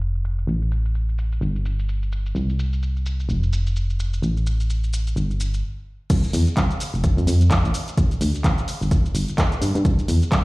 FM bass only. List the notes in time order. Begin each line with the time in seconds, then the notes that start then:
Already playing: F1
0.47 A1
1.41 G1
2.35 C2
3.29 F1
4.22 A1
5.16 G1
6.10 C2
6.33 E2
6.57 C2
6.94 F1
7.17 F2
7.27 F2
7.64 A1
7.98 A1
8.21 D2
8.44 A1
8.81 G1
9.15 G1
9.62 G2
9.75 G2
9.85 C2
10.08 E2
10.32 C2